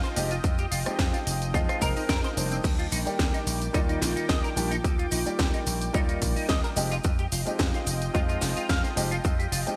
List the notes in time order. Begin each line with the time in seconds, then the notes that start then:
Already playing: F3 G#3 C4 D#4 F4 D#5 G5
0.04 C5, closed hi-hat, tambourine, cabasa
0.16 F1 F3 G#3 C4 D#4 G4, open hi-hat, tambourine, cabasa
0.31 F4, closed hi-hat, tambourine, cabasa
0.44 F2, kick, closed hi-hat, tambourine, cabasa
0.58 G4, closed hi-hat, tambourine, cabasa
0.71 F1 F4, open hi-hat, tambourine, cabasa
0.85 F3 G#3 C4 D#4 G4, muted slap bass stroke, cross-stick, closed hi-hat, tambourine, cabasa
0.99 F2, kick, snare, closed hi-hat, tambourine, cabasa
1.13 F4, closed hi-hat, tambourine, cabasa
1.27 F1, open hi-hat, tambourine, cabasa
1.42 closed hi-hat, tambourine, cabasa
1.54 F2 F3 G#3 C4 D#4 F4, kick, closed hi-hat, tambourine, cabasa
1.69 F4, cross-stick, closed hi-hat, tambourine, cabasa
1.81 F1 F3 G#3 C4 D#4 A#4, kick, open hi-hat, tambourine, cabasa
1.96 D#4, open hi-hat, tambourine, cabasa
2.09 F2 A#4, kick, snare, closed hi-hat, tambourine, cabasa
2.24 C5, closed hi-hat, tambourine, cabasa
2.36 F1 D#3 G3 A#3 D4 C5, open hi-hat, tambourine, cabasa
2.51 C4, closed hi-hat, tambourine, cabasa
2.64 D#2 D#3 G5 D6, kick, closed hi-hat, crash, tambourine, cabasa
2.79 F4, closed hi-hat, cabasa
2.92 A#1 D#4, open hi-hat, tambourine, cabasa
3.05 D#3 G3 A#3 G4 D5, closed hi-hat, tambourine, cabasa
3.19 D#2, kick, snare, closed hi-hat, tambourine, cabasa
3.34 D#4, closed hi-hat, tambourine, cabasa
3.47 A#1, open hi-hat, tambourine, cabasa
3.62 closed hi-hat, tambourine, cabasa
3.73 D#2 D#3 G3 A#3 D#4 F4 D5, kick, closed hi-hat, tambourine, cabasa
3.89 D#4, closed hi-hat, tambourine, cabasa
4.02 A#1 F4, snare, open hi-hat, tambourine, cabasa
4.16 D#4, muted slap bass stroke, closed hi-hat, tambourine, cabasa
4.29 D#2 D#5, kick, snare, closed hi-hat, tambourine, cabasa
4.44 A#4, closed hi-hat, tambourine, cabasa
4.56 A#1 D#3 G3 A#3 D4 F4 G4, open hi-hat, tambourine, cabasa
4.71 D#4, closed hi-hat, tambourine, cabasa
4.84 D#2, kick, closed hi-hat, tambourine, cabasa
4.99 F4, closed hi-hat, cabasa
5.11 A#1 D#4 F4, open hi-hat, tambourine, cabasa
5.25 D#3 G3 A#3 G4 D5, muted slap bass stroke, closed hi-hat, tambourine, cabasa
5.39 D#2, kick, snare, closed hi-hat, tambourine, cabasa
5.54 D#4, closed hi-hat, tambourine, cabasa
5.66 A#1, open hi-hat, tambourine, cabasa
5.81 closed hi-hat, tambourine, cabasa
5.93 D#2 D#3 G3 A#3 D#4 F4 D5, kick, closed hi-hat, tambourine, cabasa
6.09 D#4, closed hi-hat, tambourine, cabasa
6.22 A#1, kick, open hi-hat, tambourine, cabasa
6.36 D#4, muted slap bass stroke, open hi-hat, tambourine, cabasa
6.49 D#2 D#5, kick, snare, closed hi-hat, tambourine, cabasa
6.64 A#4, closed hi-hat, tambourine, cabasa
6.76 F1 F3 G#3 C4 D#4 F4 G4 D#5 G5, open hi-hat, tambourine, cabasa
6.91 F4, closed hi-hat, tambourine, cabasa
7.04 F2, kick, closed hi-hat, tambourine, cabasa
7.19 G4, closed hi-hat, cabasa
7.32 F1 F4, open hi-hat, tambourine, cabasa
7.45 F3 G#3 C4 D#4 G4, muted slap bass stroke, closed hi-hat, tambourine, cabasa
7.59 F2, kick, snare, closed hi-hat, tambourine, cabasa
7.74 F4, closed hi-hat, tambourine, cabasa
7.87 F1, open hi-hat, tambourine, cabasa
8.02 closed hi-hat, tambourine, cabasa
8.14 F2 F3 G#3 C4 D#4 F4, kick, closed hi-hat, tambourine, cabasa
8.29 F4, closed hi-hat, tambourine, cabasa
8.41 F1, snare, open hi-hat, tambourine, cabasa
8.57 F4, closed hi-hat, tambourine, cabasa
8.69 F2 F5, kick, snare, closed hi-hat, tambourine, cabasa
8.84 C5, closed hi-hat, tambourine, cabasa
8.96 F1 F3 G#3 C4 D#4 G4, open hi-hat, tambourine, cabasa
9.11 F4, closed hi-hat, tambourine, cabasa
9.24 F2, kick, closed hi-hat, tambourine, cabasa
9.39 G4, closed hi-hat, tambourine, cabasa
9.52 F1 F4, open hi-hat, tambourine, cabasa
9.66 F3 G#3 C4 D#4 G4, muted slap bass stroke, closed hi-hat, tambourine, cabasa